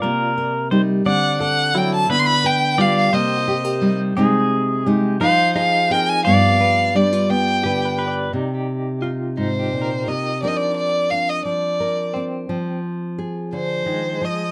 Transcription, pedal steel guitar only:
0.02 A#4
0.71 C5
1.06 D5
2.10 B4
2.78 D5
3.13 C5
4.17 G#4
4.89 G4
5.21 C5
5.96 A#4
6.25 D5
7.99 B4

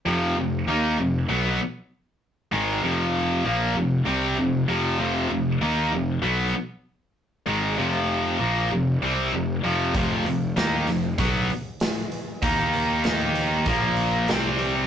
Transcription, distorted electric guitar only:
0.06 F2 C3 F3
0.37 F2 C3
0.68 D#3 A#3 D#4
0.98 F2 C3
1.29 B2 F#3 B3
2.52 G#2 D#3 G#3
2.83 F2 C3 F3
3.45 A#2 F3 A#3
3.76 F2 C3
4.06 C3 G3 C4
4.39 F2 C3
4.68 F2 C3 F3
4.98 F2 C3 F3
5.30 F2 C3
5.61 D#3 A#3 D#4
5.92 F2 C3
6.22 B2 F#3 B3
7.46 G#2 D#3 G#3
7.78 F2 C3 F3
8.39 A#2 F3 A#3
8.71 F2 C3
9.02 C3 G3 C4
9.33 F2 C3
9.63 F2 C3 F3
9.95 F2 C3 F3
10.26 F2 C3
10.56 D#3 A#3 D#4
10.87 F2 C3
11.19 B2 F#3 B3
12.43 D#3 A#3 D#4
13.67 A#2 F3 A#3
14.29 C3 G3 C4

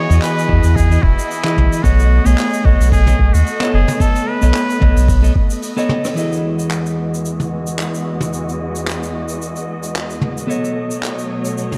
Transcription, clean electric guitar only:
0.09 E3 E4 G#4 D#5
0.48 E3 E4 G#4 D#5
0.90 E3 E4 G#4 D#5
1.44 E3 E4 G#4 D#5
1.83 B3 A4 C#5 D#5
2.25 A3 B3 C#5 D#5
2.64 B3 A4 C#5 D#5
3.06 B3 A4 C#5 D#5
3.60 B3 A4 C#5 D#5
4.00 B3 A4 C#5 D#5
4.41 B3 A4 C#5 D#5
4.80 B3 A4 C#5 D#5
5.22 B3 A4 C#5 D#5
5.76 B3 A4 C#5 D#5
6.15 E3 E4 G#4
6.19 D#5
10.47 B3 A4 C#5 D#5

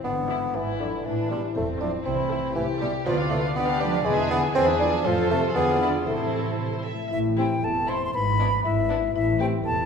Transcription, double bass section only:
0.05 G#1
0.55 G#1
1.06 A1
1.56 E1
2.06 C2
2.56 C2
3.06 D2
3.56 D2
4.05 E2
4.55 E2
5.05 F2
5.56 E2
6.08 A1
7.12 A1
7.63 E1
8.14 G#1
8.65 G#1
9.14 A1
9.65 E1

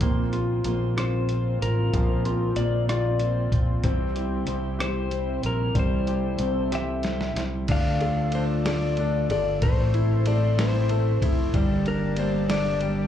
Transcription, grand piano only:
0.02 A#3
0.33 F4
0.65 A#3
0.97 F4
1.94 F3
2.25 F4
2.58 A#3
2.89 F4
3.84 C4
4.15 G4
4.47 C4
4.79 G4
5.75 G3
6.08 G4
6.40 C4
6.73 G4
7.70 D4
8.01 A4
8.34 D4
8.66 A4
8.99 D4
9.31 A4
9.62 A3
9.94 E4
10.27 A3
10.59 E4
10.90 A3
11.22 E4
11.54 G3
11.87 D4
12.18 G3
12.50 D4
12.82 G3

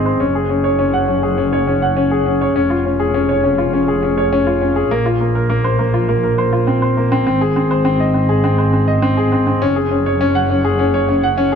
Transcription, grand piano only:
Already playing: C4 G#4 C5 D#5
0.06 C5
0.20 C#4
0.35 G#4
0.49 C#4
0.64 C#5
0.79 C#4
0.94 F#5
1.08 C#4
1.23 G#4
1.38 C#4
1.53 C#5
1.67 C#4
1.82 F#5
1.97 C#4
2.11 G#4
2.26 C#4
2.41 C#5
2.56 C#4
2.70 F4
2.85 C#4
3.00 G#4
3.14 C#4
3.29 C#5
3.44 C#4
3.58 F4
3.73 C#4
3.88 G#4
4.03 C#4
4.18 C#5
4.33 C#4
4.47 F4
4.62 C#4
4.76 G#4
4.91 A#3
5.06 F4
5.21 A#3
5.35 A#4
5.50 A#3
5.64 C5
5.79 A#3
5.94 F4
6.09 A#3
6.23 A#4
6.38 C5
6.53 F4
6.67 C4
6.82 C5
6.97 A#3
7.12 C4
7.27 C4
7.41 G#4
7.56 C4
7.71 C5
7.85 C4
8.00 D#5
8.14 C4
8.29 G#4
8.44 C4
8.58 C5
8.73 C4
8.88 D#5
9.02 C4
9.17 G#4
9.32 C4
9.47 C4
9.62 C#4
9.76 G#4
9.91 C#4
10.06 C#5
10.21 C#4
10.35 F#5
10.50 C#4
10.65 G#4
10.79 C#4
10.94 C#5
11.09 C#4
11.23 F#5
11.38 C#4

